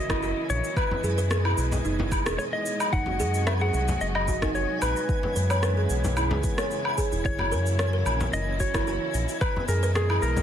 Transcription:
0.00 0.33 F#1 loud
0.00 0.73 C#3 medium
0.00 2.89 E3 medium
0.00 0.75 F#3 medium
0.00 0.75 A#3 medium
0.00 2.89 E4 medium
0.00 0.46 D#5 loud
0.00 10.43 G#5 medium
0.10 0.21 E4 medium
0.10 kick loud
0.10 cross-stick medium
0.10 low woodblock medium
0.10 shaker soft
0.23 0.36 F#4 medium
0.23 shaker soft
0.49 0.61 A#1 medium
0.49 0.75 C#5 medium
0.49 shaker medium
0.64 shaker soft
0.77 2.91 B2 medium
0.77 5.05 G#3 medium
0.77 1.81 B4 medium
0.77 5.05 D#5 medium
0.77 kick loud
0.77 low woodblock medium
0.77 shaker soft
0.91 frame drum medium
1.04 1.54 F#2 medium
1.04 1.17 G#4 medium
1.04 shaker medium
1.18 1.30 B4 medium
1.18 shaker soft
1.31 1.44 G#4 medium
1.31 cross-stick medium
1.31 shaker soft
1.45 1.57 E4 medium
1.45 low woodblock medium
1.58 1.81 B1 medium
1.58 shaker medium
1.72 frame drum medium
1.72 shaker soft
1.85 2.22 F#1 loud
1.85 1.98 D#4 medium
1.85 shaker soft
1.99 2.06 E4 medium
1.99 frame drum medium
2.12 kick loud
2.12 low woodblock medium
2.12 shaker medium
2.26 2.37 E1 medium
2.26 2.79 G#4 medium
2.26 cross-stick medium
2.26 shaker soft
2.38 2.43 C#5 medium
2.38 shaker soft
2.53 2.94 D#5 medium
2.66 shaker medium
2.80 low woodblock medium
2.80 shaker soft
2.93 3.21 F#1 loud
2.93 5.07 C3 medium
2.93 5.07 F#3 medium
2.93 3.06 D#4 medium
2.93 5.07 F#4 medium
2.93 3.48 F#5 loud
2.93 kick loud
2.93 shaker soft
3.06 3.19 F#4 medium
3.06 frame drum medium
3.20 3.71 F#2 medium
3.20 3.33 G#4 loud
3.20 shaker medium
3.34 shaker soft
3.47 3.60 C5 medium
3.47 3.52 E5 medium
3.47 cross-stick medium
3.47 low woodblock medium
3.47 shaker soft
3.61 3.73 G#4 loud
3.61 4.02 F#5 loud
3.74 3.97 C2 medium
3.74 shaker medium
3.88 frame drum medium
3.88 shaker soft
4.01 4.66 F#1 medium
4.01 4.06 D#5 loud
4.01 shaker soft
4.15 4.54 D#5 loud
4.15 low woodblock medium
4.28 4.41 F#4 loud
4.28 kick medium
4.28 shaker medium
4.42 4.54 D#4 loud
4.42 kick loud
4.42 cross-stick medium
4.42 shaker soft
4.55 4.69 F#4 medium
4.55 4.82 C#5 medium
4.55 shaker soft
4.82 4.94 A#1 medium
4.82 6.94 B4 medium
4.82 low woodblock medium
4.82 shaker medium
4.96 shaker soft
5.09 7.23 C#3 medium
5.09 7.23 E3 medium
5.09 7.23 G#3 medium
5.09 7.23 B3 medium
5.09 10.43 E4 medium
5.09 kick loud
5.09 shaker soft
5.23 frame drum medium
5.36 5.87 F#2 medium
5.36 5.49 B4 medium
5.36 shaker medium
5.50 5.62 C#5 medium
5.50 low woodblock medium
5.50 shaker soft
5.63 5.77 B4 medium
5.63 cross-stick medium
5.63 shaker soft
5.77 5.89 G#4 medium
5.90 6.33 B1 medium
5.90 shaker medium
6.04 frame drum medium
6.04 shaker soft
6.17 6.31 E4 medium
6.17 low woodblock medium
6.17 shaker soft
6.31 6.42 C#2 medium
6.31 6.39 G#4 medium
6.31 frame drum medium
6.44 kick loud
6.44 shaker medium
6.58 6.70 C#5 medium
6.58 cross-stick medium
6.58 shaker soft
6.71 shaker soft
6.85 low woodblock medium
6.98 7.11 G#4 loud
6.98 kick medium
6.98 shaker medium
7.12 7.23 E1 medium
7.12 7.24 E4 medium
7.12 shaker soft
7.25 7.54 F#1 loud
7.25 9.39 C#3 medium
7.25 9.39 E3 medium
7.25 9.39 F#3 medium
7.25 9.39 A#3 medium
7.25 7.38 E4 medium
7.25 8.29 C#5 loud
7.25 kick loud
7.25 shaker soft
7.39 7.51 F#4 medium
7.39 frame drum medium
7.39 low woodblock medium
7.52 8.03 F#2 medium
7.52 7.66 A#4 loud
7.52 shaker medium
7.66 shaker soft
7.79 7.92 C#5 medium
7.79 cross-stick medium
7.79 shaker soft
7.93 8.06 A#4 loud
8.06 8.29 A#1 medium
8.06 low woodblock medium
8.06 shaker medium
8.20 frame drum medium
8.20 shaker soft
8.33 8.98 F#1 medium
8.33 8.59 D#5 loud
8.33 shaker soft
8.60 8.73 F#4 medium
8.60 9.37 C#5 loud
8.60 kick medium
8.60 shaker medium
8.74 8.86 E4 loud
8.74 kick medium
8.74 cross-stick medium
8.74 low woodblock medium
8.74 shaker soft
8.87 9.01 F#4 medium
8.87 shaker soft
9.14 9.26 A#1 medium
9.14 shaker medium
9.29 shaker soft
9.41 10.43 B2 medium
9.41 10.43 E3 medium
9.41 10.43 G#3 medium
9.41 9.66 B4 loud
9.41 10.43 D#5 medium
9.41 kick loud
9.41 low woodblock medium
9.41 shaker soft
9.56 frame drum medium
9.68 10.19 F#2 medium
9.68 9.81 G#4 medium
9.68 9.95 A#4 medium
9.68 shaker medium
9.83 9.95 B4 medium
9.83 shaker soft
9.95 10.23 G#4 medium
9.95 10.09 G#4 medium
9.95 cross-stick medium
9.95 shaker soft
10.10 10.22 E4 medium
10.10 low woodblock medium
10.22 10.43 B1 medium
10.22 10.43 A#4 medium
10.22 shaker medium
10.37 frame drum medium
10.37 shaker soft

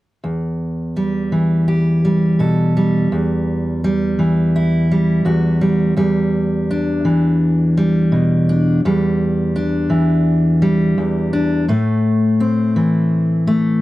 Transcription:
0.24 3.12 E2 medium
0.96 2.04 G3 soft
1.32 4.18 E3 soft
1.68 2.39 G4 soft
2.05 2.76 G3 soft
2.39 3.07 B2 soft
2.39 3.07 A4 soft
2.77 3.83 G3 soft
3.12 5.24 E2 medium
3.84 4.90 G3 soft
4.19 5.94 E3 soft
4.56 5.25 E4 soft
4.91 5.60 G3 soft
5.25 5.95 E2 medium
5.25 5.93 F#4 soft
5.61 5.96 G3 medium
5.97 8.83 E2 medium
5.97 7.76 G3 medium
6.71 8.48 D4 medium
7.05 9.59 E3 medium
7.77 8.84 G3 soft
8.12 8.79 B2 medium
8.49 8.80 D4 medium
8.85 10.97 E2 medium
8.85 10.61 G3 medium
9.56 11.32 D4 medium
9.90 11.64 E3 medium
10.62 11.69 G3 medium
10.98 11.69 E2 medium
11.33 11.65 D4 medium
11.68 13.82 A2 medium
11.68 13.46 A3 medium
12.40 13.82 C4 medium
12.76 13.82 E3 medium
13.47 13.82 A3 medium

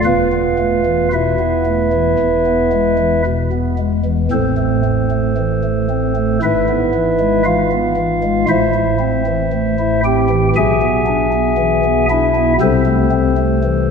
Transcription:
0.04 2.15 E1 medium
0.04 2.15 E2 medium
0.04 1.09 F4 medium
0.04 1.08 B4 medium
0.04 1.09 F5 medium
0.32 0.55 B3 soft
0.58 0.82 A3 soft
0.86 1.09 E3 soft
1.13 1.36 B2 soft
1.13 3.22 E4 soft
1.13 3.22 B4 soft
1.13 3.22 E5 medium
1.39 1.63 B3 soft
1.66 1.90 A3 soft
1.93 2.15 E3 soft
2.19 4.28 E1 medium
2.19 4.28 E2 medium
2.46 2.69 B3 soft
2.72 2.96 G#3 soft
2.99 3.22 E3 soft
3.26 3.49 B2 soft
3.52 3.75 B3 soft
3.78 4.02 G#3 soft
4.05 4.28 E3 soft
4.31 6.39 A1 medium
4.31 6.39 A2 medium
4.31 4.82 C4 medium
4.31 6.39 A4 medium
4.31 6.39 C5 medium
4.58 4.82 A3 soft
4.84 5.08 C4 medium
5.11 5.35 A3 soft
5.37 5.61 E3 soft
5.64 5.88 A3 soft
5.90 6.14 C4 soft
6.16 6.38 A3 medium
6.42 8.45 G#1 medium
6.42 8.45 G#2 medium
6.42 7.42 E4 medium
6.42 7.43 B4 medium
6.42 7.42 E5 medium
6.68 6.91 B3 medium
6.94 7.17 E3 soft
7.20 7.43 G#3 soft
7.45 7.68 E3 soft
7.45 8.46 F4 medium
7.45 8.46 F5 medium
7.71 7.94 B3 soft
7.97 8.20 E3 medium
8.23 8.45 G#3 medium
8.49 10.52 A1 medium
8.49 10.52 A2 medium
8.49 8.72 E4 medium
8.49 10.00 C5 medium
8.49 10.00 E5 loud
8.74 8.97 E4 soft
9.00 9.23 C4 medium
9.27 9.50 E3 soft
9.53 9.76 A3 soft
9.79 10.02 E4 medium
10.04 10.28 C4 medium
10.04 10.49 G4 medium
10.04 10.48 G5 medium
10.30 10.52 E3 medium
10.56 12.57 B1 medium
10.56 12.57 B2 medium
10.56 12.06 G#4 medium
10.56 12.06 E5 medium
10.56 12.05 G#5 medium
10.81 11.04 B3 medium
11.06 11.29 D4 medium
11.33 11.55 B3 medium
11.58 11.81 E3 medium
11.84 12.07 B3 medium
12.09 12.33 D4 medium
12.09 12.54 E4 medium
12.09 12.53 E5 medium
12.35 12.57 B3 medium
12.61 13.91 C2 medium
12.61 13.91 C3 medium
12.61 13.10 C4 medium
12.61 13.91 A4 medium
12.61 13.91 C5 loud
12.86 13.09 A3 medium
13.12 13.35 C4 medium
13.38 13.61 A3 medium
13.64 13.87 E3 medium

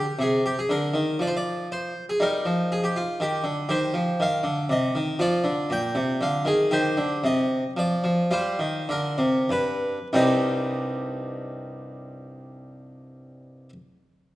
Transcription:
0.00 0.16 G4 medium
0.19 0.55 C3 soft
0.19 0.42 G#4 medium
0.46 0.57 G4 medium
0.59 0.70 G#4 medium
0.69 0.93 D3 medium
0.69 1.13 A#4 medium
0.94 1.18 D#3 medium
1.19 1.92 F3 medium
1.19 1.28 D5 medium
1.27 1.34 C5 medium
1.37 1.67 D5 medium
1.72 2.03 C5 medium
2.10 2.21 G#4 medium
2.20 2.44 G3 medium
2.20 3.66 D#4 soft
2.20 2.71 A#4 loud
2.46 3.00 F3 medium
2.72 2.84 G#4 medium
2.84 2.96 G4 medium
2.96 3.17 F4 medium
3.20 3.44 D#3 medium
3.20 3.43 G4 medium
3.44 3.68 D3 medium
3.69 3.93 D#3 medium
3.69 5.15 G4 soft
3.69 4.20 C5 loud
3.94 4.18 F3 medium
4.20 4.44 D#3 medium
4.20 4.64 F5 loud
4.43 4.68 D3 medium
4.69 4.93 C3 medium
4.69 5.20 D#5 medium
4.95 5.19 D#3 medium
5.19 5.43 F3 medium
5.19 6.68 F4 soft
5.19 5.71 D5 loud
5.44 5.68 D3 medium
5.70 5.94 A#2 medium
5.70 6.22 G5 loud
5.95 6.19 C3 medium
6.21 6.45 D3 medium
6.21 6.43 F5 medium
6.45 6.70 D#3 medium
6.45 6.72 G#4 medium
6.71 6.96 D#3 medium
6.71 7.73 G4 soft
6.71 7.17 C5 loud
6.97 7.22 D3 medium
7.24 7.62 C3 medium
7.24 7.70 D#5 loud
7.77 8.03 F3 medium
7.77 8.25 D5 loud
8.04 8.30 F3 medium
8.31 8.58 G3 medium
8.31 9.46 F4 soft
8.31 8.81 C5 loud
8.59 8.87 D#3 medium
8.89 9.18 D3 medium
8.89 9.42 A#4 medium
9.18 9.48 C3 medium
9.49 9.97 G2 medium
9.49 10.07 B4 medium
10.13 13.69 C2 medium
10.13 13.69 G2 soft
10.13 13.70 G3 soft
10.13 13.70 C4 soft
10.13 13.70 D#4 soft
10.13 13.70 G4 soft
10.13 13.73 D#5 medium

